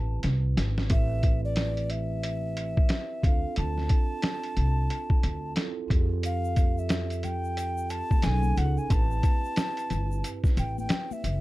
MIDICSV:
0, 0, Header, 1, 5, 480
1, 0, Start_track
1, 0, Key_signature, 0, "minor"
1, 0, Tempo, 666667
1, 650, Time_signature, 4, 2, 24, 8
1, 8213, End_track
2, 0, Start_track
2, 0, Title_t, "Ocarina"
2, 0, Program_c, 0, 79
2, 0, Note_on_c, 0, 81, 91
2, 152, Note_off_c, 0, 81, 0
2, 658, Note_on_c, 0, 76, 88
2, 1015, Note_off_c, 0, 76, 0
2, 1042, Note_on_c, 0, 74, 71
2, 1374, Note_on_c, 0, 76, 84
2, 1385, Note_off_c, 0, 74, 0
2, 2342, Note_on_c, 0, 77, 85
2, 2353, Note_off_c, 0, 76, 0
2, 2576, Note_off_c, 0, 77, 0
2, 2580, Note_on_c, 0, 81, 97
2, 3986, Note_off_c, 0, 81, 0
2, 4503, Note_on_c, 0, 77, 90
2, 4887, Note_on_c, 0, 76, 77
2, 4897, Note_off_c, 0, 77, 0
2, 5215, Note_on_c, 0, 79, 87
2, 5225, Note_off_c, 0, 76, 0
2, 5690, Note_on_c, 0, 81, 100
2, 5701, Note_off_c, 0, 79, 0
2, 5932, Note_on_c, 0, 80, 105
2, 5943, Note_off_c, 0, 81, 0
2, 6178, Note_on_c, 0, 78, 92
2, 6189, Note_off_c, 0, 80, 0
2, 6322, Note_on_c, 0, 80, 90
2, 6332, Note_off_c, 0, 78, 0
2, 6411, Note_on_c, 0, 81, 106
2, 6422, Note_off_c, 0, 80, 0
2, 7413, Note_off_c, 0, 81, 0
2, 7625, Note_on_c, 0, 79, 70
2, 7756, Note_off_c, 0, 79, 0
2, 7771, Note_on_c, 0, 79, 73
2, 8010, Note_on_c, 0, 76, 74
2, 8021, Note_off_c, 0, 79, 0
2, 8213, Note_off_c, 0, 76, 0
2, 8213, End_track
3, 0, Start_track
3, 0, Title_t, "Vibraphone"
3, 0, Program_c, 1, 11
3, 0, Note_on_c, 1, 60, 59
3, 0, Note_on_c, 1, 64, 47
3, 0, Note_on_c, 1, 67, 49
3, 0, Note_on_c, 1, 71, 57
3, 625, Note_off_c, 1, 64, 0
3, 628, Note_off_c, 1, 60, 0
3, 629, Note_off_c, 1, 67, 0
3, 633, Note_off_c, 1, 71, 0
3, 637, Note_on_c, 1, 60, 58
3, 645, Note_on_c, 1, 64, 46
3, 654, Note_on_c, 1, 67, 48
3, 665, Note_on_c, 1, 71, 52
3, 2295, Note_off_c, 1, 60, 0
3, 2299, Note_off_c, 1, 64, 0
3, 2303, Note_off_c, 1, 67, 0
3, 2309, Note_off_c, 1, 71, 0
3, 2319, Note_on_c, 1, 60, 60
3, 2329, Note_on_c, 1, 62, 50
3, 2340, Note_on_c, 1, 65, 51
3, 2347, Note_on_c, 1, 69, 64
3, 3976, Note_off_c, 1, 60, 0
3, 3981, Note_off_c, 1, 62, 0
3, 3986, Note_off_c, 1, 65, 0
3, 3990, Note_off_c, 1, 69, 0
3, 4004, Note_on_c, 1, 60, 55
3, 4005, Note_on_c, 1, 64, 46
3, 4011, Note_on_c, 1, 65, 51
3, 4016, Note_on_c, 1, 69, 66
3, 4227, Note_off_c, 1, 60, 0
3, 4236, Note_on_c, 1, 60, 77
3, 4237, Note_off_c, 1, 65, 0
3, 4246, Note_on_c, 1, 65, 59
3, 4248, Note_off_c, 1, 64, 0
3, 4253, Note_off_c, 1, 69, 0
3, 4254, Note_on_c, 1, 67, 68
3, 4262, Note_on_c, 1, 68, 67
3, 4310, Note_on_c, 1, 69, 70
3, 4314, Note_off_c, 1, 68, 0
3, 5894, Note_off_c, 1, 60, 0
3, 5899, Note_off_c, 1, 65, 0
3, 5904, Note_off_c, 1, 67, 0
3, 5924, Note_on_c, 1, 61, 64
3, 5929, Note_off_c, 1, 69, 0
3, 5929, Note_on_c, 1, 63, 58
3, 5932, Note_on_c, 1, 68, 53
3, 5937, Note_on_c, 1, 69, 64
3, 6398, Note_on_c, 1, 60, 57
3, 6407, Note_off_c, 1, 61, 0
3, 6408, Note_on_c, 1, 64, 49
3, 6410, Note_off_c, 1, 63, 0
3, 6411, Note_off_c, 1, 68, 0
3, 6414, Note_off_c, 1, 69, 0
3, 6417, Note_on_c, 1, 67, 47
3, 6423, Note_on_c, 1, 71, 57
3, 8213, Note_off_c, 1, 60, 0
3, 8213, Note_off_c, 1, 64, 0
3, 8213, Note_off_c, 1, 67, 0
3, 8213, Note_off_c, 1, 71, 0
3, 8213, End_track
4, 0, Start_track
4, 0, Title_t, "Upright bass"
4, 0, Program_c, 2, 32
4, 0, Note_on_c, 2, 33, 85
4, 147, Note_off_c, 2, 33, 0
4, 173, Note_on_c, 2, 36, 87
4, 387, Note_off_c, 2, 36, 0
4, 411, Note_on_c, 2, 32, 74
4, 626, Note_off_c, 2, 32, 0
4, 651, Note_on_c, 2, 33, 108
4, 2062, Note_off_c, 2, 33, 0
4, 2329, Note_on_c, 2, 38, 89
4, 2463, Note_off_c, 2, 38, 0
4, 2574, Note_on_c, 2, 38, 103
4, 2788, Note_off_c, 2, 38, 0
4, 3290, Note_on_c, 2, 36, 81
4, 3506, Note_off_c, 2, 36, 0
4, 3768, Note_on_c, 2, 38, 89
4, 3985, Note_off_c, 2, 38, 0
4, 4251, Note_on_c, 2, 41, 85
4, 5759, Note_off_c, 2, 41, 0
4, 5934, Note_on_c, 2, 35, 92
4, 6148, Note_off_c, 2, 35, 0
4, 6173, Note_on_c, 2, 37, 84
4, 6305, Note_off_c, 2, 37, 0
4, 6412, Note_on_c, 2, 33, 108
4, 6627, Note_off_c, 2, 33, 0
4, 7133, Note_on_c, 2, 31, 84
4, 7347, Note_off_c, 2, 31, 0
4, 7611, Note_on_c, 2, 33, 88
4, 7826, Note_off_c, 2, 33, 0
4, 8091, Note_on_c, 2, 30, 85
4, 8213, Note_off_c, 2, 30, 0
4, 8213, End_track
5, 0, Start_track
5, 0, Title_t, "Drums"
5, 166, Note_on_c, 9, 42, 77
5, 175, Note_on_c, 9, 38, 52
5, 238, Note_off_c, 9, 42, 0
5, 247, Note_off_c, 9, 38, 0
5, 413, Note_on_c, 9, 38, 81
5, 415, Note_on_c, 9, 42, 78
5, 485, Note_off_c, 9, 38, 0
5, 487, Note_off_c, 9, 42, 0
5, 560, Note_on_c, 9, 38, 74
5, 632, Note_off_c, 9, 38, 0
5, 646, Note_on_c, 9, 42, 90
5, 648, Note_on_c, 9, 36, 90
5, 718, Note_off_c, 9, 42, 0
5, 720, Note_off_c, 9, 36, 0
5, 886, Note_on_c, 9, 42, 64
5, 889, Note_on_c, 9, 36, 71
5, 958, Note_off_c, 9, 42, 0
5, 961, Note_off_c, 9, 36, 0
5, 1122, Note_on_c, 9, 42, 87
5, 1129, Note_on_c, 9, 38, 99
5, 1194, Note_off_c, 9, 42, 0
5, 1201, Note_off_c, 9, 38, 0
5, 1276, Note_on_c, 9, 42, 41
5, 1348, Note_off_c, 9, 42, 0
5, 1365, Note_on_c, 9, 42, 60
5, 1437, Note_off_c, 9, 42, 0
5, 1609, Note_on_c, 9, 42, 83
5, 1681, Note_off_c, 9, 42, 0
5, 1849, Note_on_c, 9, 42, 76
5, 1921, Note_off_c, 9, 42, 0
5, 1996, Note_on_c, 9, 36, 78
5, 2068, Note_off_c, 9, 36, 0
5, 2080, Note_on_c, 9, 42, 83
5, 2089, Note_on_c, 9, 38, 109
5, 2152, Note_off_c, 9, 42, 0
5, 2161, Note_off_c, 9, 38, 0
5, 2328, Note_on_c, 9, 36, 95
5, 2333, Note_on_c, 9, 42, 76
5, 2400, Note_off_c, 9, 36, 0
5, 2405, Note_off_c, 9, 42, 0
5, 2565, Note_on_c, 9, 42, 99
5, 2637, Note_off_c, 9, 42, 0
5, 2719, Note_on_c, 9, 38, 35
5, 2791, Note_off_c, 9, 38, 0
5, 2803, Note_on_c, 9, 42, 69
5, 2808, Note_on_c, 9, 36, 83
5, 2875, Note_off_c, 9, 42, 0
5, 2880, Note_off_c, 9, 36, 0
5, 3041, Note_on_c, 9, 42, 77
5, 3049, Note_on_c, 9, 38, 97
5, 3113, Note_off_c, 9, 42, 0
5, 3121, Note_off_c, 9, 38, 0
5, 3193, Note_on_c, 9, 42, 44
5, 3265, Note_off_c, 9, 42, 0
5, 3288, Note_on_c, 9, 42, 57
5, 3360, Note_off_c, 9, 42, 0
5, 3530, Note_on_c, 9, 42, 73
5, 3602, Note_off_c, 9, 42, 0
5, 3671, Note_on_c, 9, 36, 76
5, 3743, Note_off_c, 9, 36, 0
5, 3769, Note_on_c, 9, 42, 71
5, 3841, Note_off_c, 9, 42, 0
5, 4002, Note_on_c, 9, 42, 77
5, 4010, Note_on_c, 9, 38, 110
5, 4074, Note_off_c, 9, 42, 0
5, 4082, Note_off_c, 9, 38, 0
5, 4250, Note_on_c, 9, 36, 95
5, 4256, Note_on_c, 9, 42, 72
5, 4322, Note_off_c, 9, 36, 0
5, 4328, Note_off_c, 9, 42, 0
5, 4488, Note_on_c, 9, 42, 100
5, 4498, Note_on_c, 9, 82, 59
5, 4560, Note_off_c, 9, 42, 0
5, 4570, Note_off_c, 9, 82, 0
5, 4639, Note_on_c, 9, 82, 39
5, 4711, Note_off_c, 9, 82, 0
5, 4726, Note_on_c, 9, 42, 58
5, 4729, Note_on_c, 9, 63, 44
5, 4729, Note_on_c, 9, 82, 49
5, 4730, Note_on_c, 9, 36, 77
5, 4798, Note_off_c, 9, 42, 0
5, 4801, Note_off_c, 9, 63, 0
5, 4801, Note_off_c, 9, 82, 0
5, 4802, Note_off_c, 9, 36, 0
5, 4881, Note_on_c, 9, 82, 37
5, 4953, Note_off_c, 9, 82, 0
5, 4962, Note_on_c, 9, 42, 89
5, 4969, Note_on_c, 9, 82, 58
5, 4970, Note_on_c, 9, 38, 113
5, 5034, Note_off_c, 9, 42, 0
5, 5041, Note_off_c, 9, 82, 0
5, 5042, Note_off_c, 9, 38, 0
5, 5114, Note_on_c, 9, 42, 44
5, 5127, Note_on_c, 9, 82, 36
5, 5186, Note_off_c, 9, 42, 0
5, 5199, Note_off_c, 9, 82, 0
5, 5206, Note_on_c, 9, 42, 60
5, 5216, Note_on_c, 9, 64, 51
5, 5216, Note_on_c, 9, 82, 38
5, 5278, Note_off_c, 9, 42, 0
5, 5288, Note_off_c, 9, 64, 0
5, 5288, Note_off_c, 9, 82, 0
5, 5361, Note_on_c, 9, 82, 37
5, 5433, Note_off_c, 9, 82, 0
5, 5451, Note_on_c, 9, 42, 72
5, 5459, Note_on_c, 9, 82, 66
5, 5523, Note_off_c, 9, 42, 0
5, 5531, Note_off_c, 9, 82, 0
5, 5597, Note_on_c, 9, 82, 48
5, 5669, Note_off_c, 9, 82, 0
5, 5688, Note_on_c, 9, 82, 41
5, 5690, Note_on_c, 9, 42, 70
5, 5760, Note_off_c, 9, 82, 0
5, 5762, Note_off_c, 9, 42, 0
5, 5838, Note_on_c, 9, 36, 72
5, 5839, Note_on_c, 9, 63, 52
5, 5839, Note_on_c, 9, 82, 37
5, 5910, Note_off_c, 9, 36, 0
5, 5911, Note_off_c, 9, 63, 0
5, 5911, Note_off_c, 9, 82, 0
5, 5921, Note_on_c, 9, 42, 89
5, 5923, Note_on_c, 9, 64, 50
5, 5923, Note_on_c, 9, 82, 45
5, 5929, Note_on_c, 9, 38, 103
5, 5993, Note_off_c, 9, 42, 0
5, 5995, Note_off_c, 9, 64, 0
5, 5995, Note_off_c, 9, 82, 0
5, 6001, Note_off_c, 9, 38, 0
5, 6068, Note_on_c, 9, 63, 65
5, 6068, Note_on_c, 9, 82, 43
5, 6140, Note_off_c, 9, 63, 0
5, 6140, Note_off_c, 9, 82, 0
5, 6168, Note_on_c, 9, 64, 48
5, 6168, Note_on_c, 9, 82, 37
5, 6174, Note_on_c, 9, 42, 76
5, 6240, Note_off_c, 9, 64, 0
5, 6240, Note_off_c, 9, 82, 0
5, 6246, Note_off_c, 9, 42, 0
5, 6320, Note_on_c, 9, 82, 40
5, 6392, Note_off_c, 9, 82, 0
5, 6410, Note_on_c, 9, 36, 89
5, 6410, Note_on_c, 9, 42, 94
5, 6416, Note_on_c, 9, 82, 55
5, 6482, Note_off_c, 9, 36, 0
5, 6482, Note_off_c, 9, 42, 0
5, 6488, Note_off_c, 9, 82, 0
5, 6559, Note_on_c, 9, 82, 43
5, 6631, Note_off_c, 9, 82, 0
5, 6647, Note_on_c, 9, 42, 59
5, 6649, Note_on_c, 9, 63, 51
5, 6649, Note_on_c, 9, 82, 48
5, 6650, Note_on_c, 9, 36, 76
5, 6719, Note_off_c, 9, 42, 0
5, 6721, Note_off_c, 9, 63, 0
5, 6721, Note_off_c, 9, 82, 0
5, 6722, Note_off_c, 9, 36, 0
5, 6801, Note_on_c, 9, 82, 35
5, 6873, Note_off_c, 9, 82, 0
5, 6885, Note_on_c, 9, 42, 85
5, 6890, Note_on_c, 9, 82, 51
5, 6893, Note_on_c, 9, 38, 110
5, 6957, Note_off_c, 9, 42, 0
5, 6962, Note_off_c, 9, 82, 0
5, 6965, Note_off_c, 9, 38, 0
5, 7035, Note_on_c, 9, 42, 46
5, 7043, Note_on_c, 9, 82, 39
5, 7107, Note_off_c, 9, 42, 0
5, 7115, Note_off_c, 9, 82, 0
5, 7129, Note_on_c, 9, 42, 57
5, 7137, Note_on_c, 9, 64, 56
5, 7137, Note_on_c, 9, 82, 37
5, 7201, Note_off_c, 9, 42, 0
5, 7209, Note_off_c, 9, 64, 0
5, 7209, Note_off_c, 9, 82, 0
5, 7283, Note_on_c, 9, 82, 42
5, 7355, Note_off_c, 9, 82, 0
5, 7374, Note_on_c, 9, 42, 79
5, 7377, Note_on_c, 9, 82, 59
5, 7446, Note_off_c, 9, 42, 0
5, 7449, Note_off_c, 9, 82, 0
5, 7514, Note_on_c, 9, 36, 72
5, 7520, Note_on_c, 9, 82, 49
5, 7525, Note_on_c, 9, 38, 34
5, 7586, Note_off_c, 9, 36, 0
5, 7592, Note_off_c, 9, 82, 0
5, 7597, Note_off_c, 9, 38, 0
5, 7612, Note_on_c, 9, 42, 69
5, 7612, Note_on_c, 9, 82, 43
5, 7684, Note_off_c, 9, 42, 0
5, 7684, Note_off_c, 9, 82, 0
5, 7764, Note_on_c, 9, 63, 58
5, 7764, Note_on_c, 9, 82, 37
5, 7836, Note_off_c, 9, 63, 0
5, 7836, Note_off_c, 9, 82, 0
5, 7841, Note_on_c, 9, 42, 84
5, 7849, Note_on_c, 9, 38, 101
5, 7852, Note_on_c, 9, 64, 51
5, 7852, Note_on_c, 9, 82, 50
5, 7913, Note_off_c, 9, 42, 0
5, 7921, Note_off_c, 9, 38, 0
5, 7924, Note_off_c, 9, 64, 0
5, 7924, Note_off_c, 9, 82, 0
5, 8000, Note_on_c, 9, 63, 60
5, 8000, Note_on_c, 9, 82, 45
5, 8072, Note_off_c, 9, 63, 0
5, 8072, Note_off_c, 9, 82, 0
5, 8094, Note_on_c, 9, 42, 73
5, 8094, Note_on_c, 9, 64, 53
5, 8094, Note_on_c, 9, 82, 40
5, 8166, Note_off_c, 9, 42, 0
5, 8166, Note_off_c, 9, 64, 0
5, 8166, Note_off_c, 9, 82, 0
5, 8213, End_track
0, 0, End_of_file